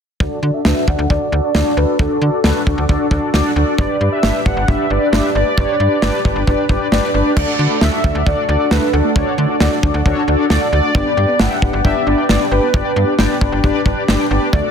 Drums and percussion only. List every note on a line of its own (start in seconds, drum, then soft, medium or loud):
0.20 kick loud
0.65 snare loud
0.88 kick medium
1.10 kick medium
1.55 snare loud
1.99 kick loud
2.44 snare loud
2.67 kick medium
2.89 kick medium
3.11 kick medium
3.34 snare loud
3.78 kick loud
4.23 snare loud
4.46 kick loud
4.68 kick medium
5.13 snare loud
5.58 kick loud
6.02 snare loud
6.25 kick loud
6.47 kick medium
6.69 kick medium
6.92 snare loud
7.37 kick loud
7.37 crash medium
7.81 snare loud
8.04 kick loud
8.27 kick medium
8.71 snare loud
9.16 kick loud
9.60 snare loud
9.83 kick loud
10.06 kick loud
10.50 snare loud
10.95 kick loud
11.39 snare loud
11.62 kick loud
11.85 kick loud
12.29 snare loud
12.74 kick loud
13.19 snare loud
13.41 kick loud
13.64 kick loud
13.86 kick medium
14.08 snare loud
14.53 kick loud